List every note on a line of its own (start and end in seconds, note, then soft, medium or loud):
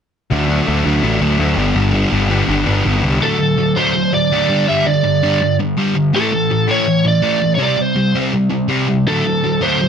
0.30 0.60 D2 medium
0.30 0.47 D3 medium
0.30 0.48 F#3 medium
0.30 0.48 A3 medium
0.30 0.49 D4 medium
0.48 0.65 D3 medium
0.48 0.66 F#3 medium
0.48 0.66 A3 medium
0.48 0.67 D4 medium
0.66 0.82 D2 medium
0.66 0.83 D3 medium
0.66 0.84 F#3 medium
0.66 0.84 A3 medium
0.66 0.85 D4 medium
0.84 1.00 D2 medium
0.84 1.01 D3 medium
0.84 1.01 F#3 medium
0.84 1.02 A3 medium
0.84 1.03 D4 medium
1.02 1.18 A1 medium
1.02 1.19 D3 medium
1.02 1.19 F#3 medium
1.02 1.20 A3 medium
1.02 1.21 D4 medium
1.20 1.36 D2 medium
1.20 1.37 D3 medium
1.20 1.38 F#3 medium
1.20 1.38 A3 medium
1.20 1.39 D4 medium
1.38 1.54 D2 medium
1.38 1.56 D3 medium
1.38 1.57 F#3 medium
1.38 1.57 A3 medium
1.38 1.58 D4 medium
1.57 1.72 G1 medium
1.57 1.73 G2 medium
1.57 1.74 D3 medium
1.57 1.74 G3 medium
1.57 1.74 B3 medium
1.57 1.75 D4 loud
1.74 2.04 G1 medium
1.74 1.91 G2 medium
1.74 1.92 D3 medium
1.74 1.92 G3 medium
1.74 1.93 B3 medium
1.74 1.93 D4 medium
1.92 2.10 G2 medium
1.92 2.10 D3 medium
1.92 2.11 G3 medium
1.92 2.11 B3 medium
1.92 2.12 D4 medium
2.11 2.42 G1 medium
2.11 2.28 G2 medium
2.11 2.28 D3 medium
2.11 2.29 G3 medium
2.11 2.29 B3 medium
2.11 2.29 D4 medium
2.29 2.46 G2 medium
2.29 2.46 D3 medium
2.29 2.47 G3 medium
2.29 2.48 B3 loud
2.29 2.48 D4 medium
2.47 2.63 G1 medium
2.47 2.64 G2 medium
2.47 2.64 D3 medium
2.47 2.65 G3 medium
2.47 2.65 B3 medium
2.47 2.65 D4 medium
2.66 2.82 G1 medium
2.66 2.83 G2 medium
2.66 2.83 D3 medium
2.66 2.83 G3 medium
2.66 2.85 B3 medium
2.66 2.84 D4 medium
2.84 3.01 G1 medium
2.84 3.01 G2 medium
2.84 3.02 D3 medium
2.84 3.02 G3 medium
2.84 3.02 B3 loud
2.84 3.03 D4 medium
3.02 3.19 C2 medium
3.02 3.20 G2 medium
3.02 3.19 D3 medium
3.02 3.21 G3 medium
3.02 3.21 B3 medium
3.02 3.21 D4 medium
3.20 3.37 D3 medium
3.20 3.37 F#3 medium
3.20 3.39 A3 medium
3.20 3.79 A4 medium
3.38 3.56 D3 medium
3.38 3.56 F#3 medium
3.58 3.75 D3 medium
3.58 3.75 F#3 medium
3.76 3.94 D3 medium
3.76 3.94 F#3 medium
3.76 3.95 A3 loud
3.76 4.14 C5 medium
3.95 4.12 D3 medium
3.95 4.12 F#3 medium
4.13 4.30 D3 medium
4.13 4.30 F#3 medium
4.13 4.65 D5 medium
4.32 4.48 D3 medium
4.32 4.48 F#3 medium
4.32 4.50 A3 loud
4.48 4.66 G2 medium
4.48 4.67 D3 medium
4.48 4.67 G3 loud
4.68 4.84 G2 medium
4.68 4.85 D3 medium
4.68 4.86 G3 medium
4.68 4.87 E5 loud
4.85 5.02 G2 medium
4.85 5.03 D3 medium
4.85 5.56 D5 loud
5.04 5.21 G2 medium
5.04 5.21 D3 medium
5.23 5.40 G2 medium
5.23 5.40 D3 loud
5.23 5.41 G3 loud
5.41 5.58 G2 medium
5.41 5.58 D3 medium
5.59 5.76 G2 medium
5.59 5.76 D3 medium
5.77 5.94 G2 medium
5.77 5.94 D3 medium
5.77 5.96 G3 loud
5.95 6.12 G2 medium
5.95 6.12 D3 medium
6.13 6.31 A2 medium
6.13 6.32 E3 medium
6.13 6.32 A3 medium
6.13 6.66 A4 medium
6.33 6.49 A2 medium
6.33 6.50 E3 medium
6.50 6.66 A2 medium
6.50 6.67 E3 medium
6.67 6.85 A2 medium
6.67 6.86 E3 loud
6.67 6.86 A3 loud
6.67 7.04 C#5 loud
6.86 7.03 A2 medium
6.86 7.04 E3 medium
7.05 7.21 A2 medium
7.05 7.21 E3 medium
7.05 7.54 D5 loud
7.22 7.40 A2 medium
7.22 7.40 E3 loud
7.22 7.41 A3 medium
7.41 7.59 A2 medium
7.41 7.58 E3 medium
7.55 7.77 C3 medium
7.55 7.62 C#5 medium
7.59 7.77 G3 medium
7.59 7.78 C4 loud
7.63 7.82 D5 loud
7.78 7.95 C3 medium
7.78 7.95 G3 medium
7.78 8.17 C5 medium
7.96 8.13 C3 medium
7.96 8.13 G3 medium
8.15 8.32 C3 medium
8.15 8.32 G3 loud
8.15 8.33 C4 loud
8.33 8.49 C3 medium
8.33 8.49 G3 medium
8.50 8.68 C3 medium
8.50 8.68 G3 medium
8.69 8.87 C3 medium
8.69 8.87 G3 medium
8.69 8.88 C4 loud
8.88 9.05 C3 medium
8.88 9.05 G3 medium
9.07 9.24 D3 medium
9.07 9.24 F#3 medium
9.07 9.25 A3 medium
9.07 9.64 A4 medium
9.25 9.42 D3 medium
9.25 9.42 F#3 medium
9.44 9.60 D3 medium
9.44 9.61 F#3 medium
9.61 9.79 D3 medium
9.61 9.79 F#3 medium
9.61 9.80 A3 medium
9.61 9.88 C5 medium
9.80 9.88 D3 medium
9.80 9.88 F#3 medium